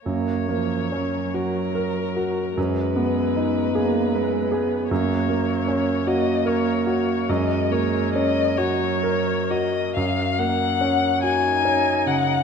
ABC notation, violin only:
X:1
M:6/8
L:1/8
Q:3/8=48
K:F#
V:1 name="Violin"
c3 A3 | B6 | c3 d c c | d c d c2 d |
e f2 g2 f |]